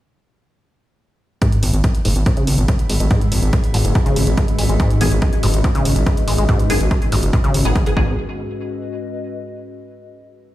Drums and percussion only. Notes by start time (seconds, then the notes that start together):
1.42 kick, closed hi-hat
1.52 closed hi-hat
1.63 open hi-hat
1.73 closed hi-hat
1.84 kick, closed hi-hat
1.95 closed hi-hat
2.05 open hi-hat
2.16 closed hi-hat
2.26 kick, closed hi-hat
2.37 closed hi-hat
2.47 open hi-hat
2.58 closed hi-hat
2.68 kick, closed hi-hat
2.79 closed hi-hat
2.90 open hi-hat
3.00 closed hi-hat
3.11 kick, closed hi-hat
3.21 closed hi-hat
3.32 open hi-hat
3.43 closed hi-hat
3.53 kick, closed hi-hat
3.64 closed hi-hat
3.74 open hi-hat
3.85 closed hi-hat
3.95 kick, closed hi-hat
4.06 closed hi-hat
4.16 open hi-hat
4.27 closed hi-hat
4.37 kick, closed hi-hat
4.48 closed hi-hat
4.59 open hi-hat
4.69 closed hi-hat
4.80 kick, closed hi-hat
4.91 closed hi-hat
5.01 open hi-hat
5.12 closed hi-hat
5.22 kick, closed hi-hat
5.33 closed hi-hat
5.43 open hi-hat
5.54 closed hi-hat
5.64 kick, closed hi-hat
5.75 closed hi-hat
5.85 open hi-hat
5.96 closed hi-hat
6.07 kick, closed hi-hat
6.17 closed hi-hat
6.28 open hi-hat
6.38 closed hi-hat
6.49 kick, closed hi-hat
6.59 closed hi-hat
6.70 open hi-hat
6.81 closed hi-hat
6.91 kick, closed hi-hat
7.02 closed hi-hat
7.12 open hi-hat
7.23 closed hi-hat
7.33 kick, closed hi-hat
7.44 closed hi-hat
7.54 open hi-hat
7.76 kick, closed hi-hat
7.86 closed hi-hat
7.97 kick